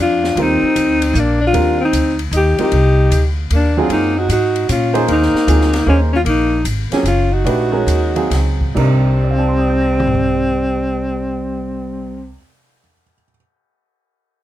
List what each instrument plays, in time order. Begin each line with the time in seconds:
Already playing: upright bass F2, upright piano A3 G4 C5 D5
0.00 alto saxophone D4 F4
0.24 snare
0.36 upright bass D#2, upright piano G3 C4 F4 A#4, alto saxophone C4, ride
0.42 alto saxophone D#4
0.62 muted upright bass stroke
0.76 upright bass D2, hi-hat pedal, ride
1.02 ride
1.14 upright bass A#1, alto saxophone A#3, hi-hat pedal
1.19 alto saxophone D4
1.41 alto saxophone D4
1.47 alto saxophone F4
1.53 upright bass D#2, upright piano G3 C4 F4 A#4, ride
1.80 alto saxophone C4
1.85 alto saxophone D#4
1.93 upright bass D2, hi-hat pedal, ride
2.19 ride
2.31 upright bass D#2, alto saxophone D#4, hi-hat pedal, ride
2.36 alto saxophone G4
2.58 upright piano G3 C4 F4 A#4, alto saxophone D#4, muted upright bass stroke, ride
2.63 alto saxophone G4
2.72 upright bass C2, ride
3.10 upright bass D2, hi-hat pedal, ride
3.50 upright bass D#2, alto saxophone A#3, ride
3.55 alto saxophone D4
3.77 upright piano F#3 C4 F4 G#4, alto saxophone D4 F4
3.89 upright bass F#2, alto saxophone A#3 D#4, ride
4.17 alto saxophone D#4 F#4
4.29 upright bass G#2, alto saxophone D#4 F#4, hi-hat pedal, ride
4.56 ride
4.69 upright bass A#2, alto saxophone C#4 F4, hi-hat pedal, ride
4.93 upright piano A#3 D#4 G#4 C5, ride
5.07 upright bass D#2, alto saxophone A#3, ride
5.12 alto saxophone D#4
5.22 snare
5.33 muted upright bass stroke, snare
5.47 upright bass D2, upright piano F#3 C4 F4 G#4, hi-hat pedal, ride
5.61 snare
5.73 snare, ride
5.86 upright bass D#2, alto saxophone A#3 C#4, upright piano A#3 D#4 G#4 C5
6.13 alto saxophone C#4 F4
6.25 upright bass A#1, alto saxophone A#3, ride
6.29 alto saxophone D#4
6.65 upright bass G#1, hi-hat pedal, ride
6.91 upright piano F#3 C4 F4 G#4, alto saxophone A#3 C#4, muted upright bass stroke, snare, ride
7.03 upright bass F#1, alto saxophone C#4, hi-hat pedal, ride
7.08 alto saxophone F4
7.32 alto saxophone D#4 F#4
7.44 upright bass A#1, upright piano A3 D4 G4 B4, ride
7.71 upright piano G#3 C#4 F#4 A#4
7.86 upright bass D#2, hi-hat pedal, ride
8.15 upright piano F#3 C4 G#4 F5, ride
8.30 upright bass C#2, snare, ride
8.61 kick
8.75 upright bass C2, upright piano C3 G3 D4 D#4 A#4, alto saxophone G3 C4, kick, crash
9.23 upright piano D5
9.31 upright piano F5
9.38 upright piano A5
9.48 upright piano C6
9.58 upright piano D#6
9.68 upright piano G6
9.80 upright piano A#6
9.93 upright piano D7
10.00 mid tom
10.07 floor tom
10.15 kick